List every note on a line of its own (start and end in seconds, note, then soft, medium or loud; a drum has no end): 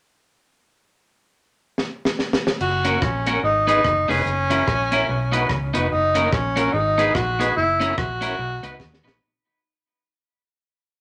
1.78 snare medium
2.05 snare medium
2.19 snare medium
2.33 snare medium
2.47 snare medium
2.60 2.96 F#1 loud
2.60 3.04 F#4 medium
2.60 crash medium
2.85 2.98 A#3 medium
2.85 2.98 C#4 medium
2.85 2.98 F#4 medium
2.85 2.98 A#4 medium
2.85 closed hi-hat medium
3.02 3.37 A#1 medium
3.02 3.43 C#4 medium
3.02 kick loud
3.02 cross-stick loud
3.26 3.39 A#3 medium
3.26 3.39 C#4 medium
3.26 3.40 C#4 medium
3.26 3.39 F#4 medium
3.26 3.40 F#4 medium
3.26 3.40 A#4 medium
3.26 closed hi-hat medium
3.43 3.79 G#1 loud
3.43 3.67 D#4 medium
3.43 3.49 G#4 soft
3.43 3.49 B4 soft
3.67 3.80 B3 medium
3.67 3.81 D#4 medium
3.67 4.10 D#4 loud
3.67 3.81 D#4 medium
3.67 3.81 G#4 medium
3.67 3.81 B4 loud
3.67 closed hi-hat medium
3.84 4.06 F#1 medium
3.84 kick loud
3.84 cross-stick loud
4.08 4.24 F1 medium
4.08 4.22 B3 medium
4.08 5.75 C#4 loud
4.08 4.22 D#4 medium
4.08 4.22 G#4 loud
4.08 4.22 G#4 medium
4.08 4.23 B4 medium
4.08 4.22 B4 loud
4.08 open hi-hat medium
4.26 4.61 F#1 loud
4.26 hi-hat pedal medium
4.50 4.63 C#4 medium
4.50 4.63 E4 medium
4.50 4.64 E4 medium
4.50 4.63 F#4 medium
4.50 4.64 A#4 loud
4.50 4.64 A#4 medium
4.50 closed hi-hat medium
4.68 5.03 A#1 medium
4.68 kick loud
4.68 cross-stick loud
4.91 5.04 C#4 medium
4.91 5.05 C#4 medium
4.91 5.05 E4 medium
4.91 5.05 F#4 medium
4.91 5.05 A#4 medium
4.91 5.06 A#4 medium
4.91 closed hi-hat medium
5.09 5.44 B1 loud
5.09 5.14 F#4 soft
5.09 5.14 B4 soft
5.09 muted clean electric guitar stroke soft
5.32 5.46 B3 loud
5.32 5.46 D#4 medium
5.32 5.46 F#4 medium
5.32 5.46 B4 medium
5.32 5.46 B4 loud
5.32 closed hi-hat medium
5.49 5.71 C#2 medium
5.49 kick loud
5.49 cross-stick loud
5.74 5.89 F1 medium
5.74 5.87 B3 loud
5.74 5.87 D#4 medium
5.74 5.88 F#4 loud
5.74 5.87 F#4 medium
5.74 5.88 B4 medium
5.74 5.88 B4 loud
5.74 closed hi-hat medium
5.90 6.27 F#1 medium
5.90 6.33 D#4 medium
6.15 6.28 A#3 medium
6.15 6.28 C#4 medium
6.15 6.29 C#4 medium
6.15 6.29 F#4 medium
6.15 6.29 A#4 medium
6.15 6.29 A#4 loud
6.15 closed hi-hat medium
6.32 6.68 A#1 loud
6.32 6.74 C#4 medium
6.32 kick loud
6.32 cross-stick loud
6.56 6.69 A#3 medium
6.56 6.70 C#4 medium
6.56 6.70 F#4 medium
6.56 6.70 A#4 medium
6.56 closed hi-hat loud
6.73 7.09 G#1 loud
6.73 7.16 D#4 medium
6.73 6.79 G#4 soft
6.73 6.79 B4 soft
6.98 7.11 B3 loud
6.98 7.11 D#4 medium
6.98 7.11 G#4 medium
6.98 7.12 G#4 loud
6.98 7.11 B4 loud
6.98 7.12 B4 loud
6.98 closed hi-hat medium
7.15 7.50 A#1 medium
7.15 7.56 F#4 loud
7.15 kick loud
7.15 cross-stick loud
7.39 7.52 B3 medium
7.39 7.52 D#4 medium
7.39 7.52 G#4 medium
7.39 7.53 G#4 medium
7.39 7.53 B4 loud
7.39 7.53 B4 medium
7.39 closed hi-hat loud
7.57 7.92 F#1 loud
7.57 7.95 E4 medium
7.80 7.93 C#4 medium
7.80 7.94 E4 medium
7.80 7.94 F#4 medium
7.80 7.94 A#4 loud
7.80 closed hi-hat medium
7.98 8.33 A#1 medium
7.98 9.00 F#4 loud
7.98 kick loud
7.98 cross-stick loud
8.21 8.34 C#4 medium
8.21 8.35 C#4 medium
8.21 8.35 E4 medium
8.21 8.35 F#4 medium
8.21 8.35 A#4 medium
8.21 8.35 A#4 loud
8.21 closed hi-hat medium
8.39 8.60 B1 loud
8.39 8.44 F#4 soft
8.39 8.44 B4 soft
8.63 8.78 C#2 medium
8.63 8.76 B3 medium
8.63 8.76 D#4 medium
8.63 8.76 F#4 medium
8.63 8.76 B4 loud
8.63 8.77 B4 medium
8.63 closed hi-hat medium
8.80 9.01 D#2 medium
8.80 kick loud
8.80 snare medium
8.94 snare medium
9.04 9.18 A#1 medium
9.04 9.17 B3 medium
9.04 9.17 D#4 medium
9.04 9.17 F#4 medium
9.04 9.17 B4 loud
9.04 9.18 B4 loud
9.04 snare loud